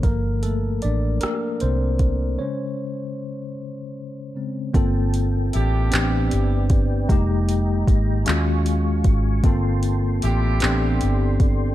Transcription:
0.03 0.78 G1 medium
0.03 0.56 F3 soft
0.03 0.41 A#3 medium
0.03 0.42 A4 soft
0.03 0.44 A#4 medium
0.03 kick medium
0.03 closed hi-hat medium
0.43 0.80 A3 medium
0.43 0.79 A4 medium
0.43 closed hi-hat soft
0.82 1.19 A1 medium
0.82 1.20 D4 medium
0.82 1.23 D5 medium
0.82 closed hi-hat soft
1.21 1.59 A#3 medium
1.21 1.58 A#4 medium
1.21 cross-stick medium
1.21 closed hi-hat medium
1.60 2.36 C2 medium
1.60 2.36 C4 medium
1.60 2.40 C5 medium
1.60 closed hi-hat soft
1.99 kick medium
1.99 closed hi-hat soft
2.39 3.53 C#3 soft
2.39 3.53 G#3 soft
2.39 4.32 C#4 medium
2.39 3.53 C5 medium
2.39 4.31 C#5 medium
4.36 4.71 C#3 soft
4.36 4.71 G#3 soft
4.36 4.71 C4 soft
4.73 5.49 G1 loud
4.73 5.91 A#3 medium
4.73 5.91 C4 medium
4.73 5.92 F4 medium
4.73 5.93 A4 medium
4.73 5.90 G5 medium
4.73 5.91 A5 medium
4.73 kick loud
4.73 closed hi-hat medium
5.14 closed hi-hat medium
5.53 5.89 A1 medium
5.53 6.66 D4 medium
5.53 6.66 E4 medium
5.53 6.66 G4 medium
5.53 closed hi-hat soft
5.91 6.28 A1 loud
5.91 7.09 B3 medium
5.91 7.09 C4 medium
5.91 7.10 D4 medium
5.91 7.11 G4 medium
5.91 7.08 B4 medium
5.91 7.08 D5 medium
5.91 8.25 G5 medium
5.91 clap loud
5.91 closed hi-hat medium
6.31 7.06 G1 medium
6.31 closed hi-hat medium
6.70 kick loud
6.70 closed hi-hat soft
7.09 7.84 F1 loud
7.09 8.25 G#3 medium
7.09 9.42 G#3 medium
7.09 8.27 A#3 medium
7.09 8.28 D#4 medium
7.09 8.28 G4 medium
7.09 8.25 D#5 medium
7.09 8.25 A#5 medium
7.09 kick loud
7.09 closed hi-hat medium
7.49 closed hi-hat medium
7.88 8.23 G#1 medium
7.88 kick medium
7.88 closed hi-hat medium
8.26 9.02 D#2 loud
8.26 9.44 G#3 medium
8.26 9.45 C#4 medium
8.26 9.44 F4 medium
8.26 9.46 F#4 medium
8.26 9.43 F5 medium
8.26 9.43 G#5 medium
8.26 9.43 C#6 medium
8.26 clap loud
8.26 closed hi-hat medium
8.66 closed hi-hat medium
9.04 9.41 G#1 loud
9.04 kick medium
9.04 closed hi-hat soft
9.43 10.19 G1 loud
9.43 10.62 A#3 medium
9.43 10.61 A#3 medium
9.43 10.60 C4 medium
9.43 10.63 F4 medium
9.43 10.63 A4 medium
9.43 10.61 G5 medium
9.43 10.61 A5 medium
9.43 10.61 C6 medium
9.43 kick loud
9.43 closed hi-hat medium
9.83 closed hi-hat medium
10.22 10.59 A1 medium
10.22 11.36 D4 medium
10.22 11.36 E4 medium
10.22 11.36 G4 medium
10.22 closed hi-hat medium
10.60 10.98 A1 loud
10.60 11.75 B3 medium
10.60 11.75 C4 medium
10.60 11.75 D4 medium
10.60 11.75 G4 medium
10.60 11.75 A4 medium
10.60 11.75 D5 medium
10.60 11.75 G5 medium
10.60 11.75 C6 medium
10.60 clap loud
10.60 closed hi-hat medium
11.01 11.75 G1 medium
11.01 closed hi-hat medium
11.40 kick medium
11.40 closed hi-hat soft

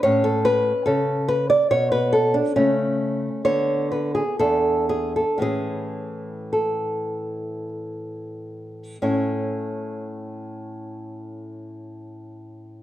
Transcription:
0.03 0.71 A2 medium
0.03 2.53 C#4 soft
0.03 0.24 C#5 loud
0.24 0.45 A4 medium
0.45 0.86 B4 loud
0.86 1.54 C#3 medium
0.86 1.27 A4 medium
1.28 1.49 B4 medium
1.50 1.70 D5 medium
1.71 2.39 B2 medium
1.71 1.91 C#5 loud
1.92 2.14 B4 medium
2.13 2.35 A4 medium
2.34 2.55 D4 medium
2.56 3.28 C#3 medium
2.56 3.42 A3 soft
2.56 3.42 C#4 medium
3.45 4.21 D3 medium
3.45 4.37 B3 soft
3.45 3.90 C#5 medium
3.92 4.14 B4 medium
4.15 4.39 G#4 medium
4.39 5.22 E2 medium
4.39 5.39 D4 soft
4.39 4.88 A4 medium
4.89 5.16 G#4 medium
5.16 5.41 A4 medium
5.38 8.96 A2 soft
5.38 8.97 E3 soft
5.38 8.98 C#4 soft
5.42 6.49 G#4 medium
6.53 7.68 A4 medium
9.02 12.83 A2 medium
9.02 12.83 C#4 soft
9.02 12.83 E4 soft
9.02 12.83 A4 soft
9.02 12.83 C#5 soft

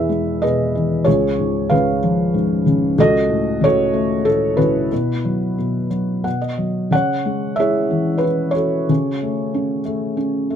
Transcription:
0.00 1.03 E2 medium
0.00 0.41 B2 soft
0.00 0.74 E3 medium
0.00 1.08 E4 medium
0.00 0.43 G#4 medium
0.00 0.44 B4 medium
0.00 0.44 E5 medium
0.09 1.04 G#3 soft
0.42 1.05 B2 soft
0.42 1.03 G#4 medium
0.42 1.04 B4 medium
0.42 1.09 D#5 medium
0.75 1.06 E3 soft
1.05 2.94 C#2 medium
1.05 1.99 F4 medium
1.05 1.70 G#4 medium
1.05 1.73 C#5 medium
1.39 2.33 G#2 soft
1.70 2.65 C#3 medium
1.70 2.63 G#4 medium
1.70 2.62 B4 medium
1.70 2.62 F5 medium
2.03 2.95 F3 medium
2.34 2.96 G#2 soft
2.66 2.97 C#3 medium
2.98 4.87 C#2 medium
2.98 3.63 F#4 medium
2.98 3.62 A4 medium
2.98 3.65 D#5 loud
3.29 4.25 A2 soft
3.61 4.56 C#3 medium
3.61 4.56 F#4 medium
3.61 4.24 A4 medium
3.61 4.29 C#5 medium
3.93 4.88 A3 medium
4.25 4.89 A2 soft
4.25 4.59 A4 medium
4.57 4.90 C#3 medium
4.57 5.87 E4 medium
4.57 5.87 F#4 soft
4.57 5.87 B4 medium
4.92 5.57 B2 medium
5.25 5.89 F#3 soft
5.58 6.22 B2 medium
5.90 6.24 F#3 soft
6.24 6.90 B2 soft
6.24 6.41 F#5 medium
6.42 6.89 D#5 medium
6.58 6.91 F#3 soft
6.91 8.85 C#3 medium
6.91 7.55 F#5 medium
6.95 7.59 C#5 medium
7.26 8.53 G#3 soft
7.56 8.22 E4 soft
7.56 8.54 G#4 medium
7.56 8.18 E5 medium
7.60 8.16 C#5 medium
7.90 8.86 E3 soft
8.18 8.52 B4 medium
8.18 8.25 C#5 medium
8.51 9.79 C#5 medium
8.55 9.82 F#4 soft
8.55 9.82 A4 soft
8.89 10.56 C#3 medium
9.23 9.84 A3 soft
9.54 10.15 C#4 medium
9.85 10.49 A3 medium
10.17 10.56 C#4 soft
10.50 10.56 A3 medium

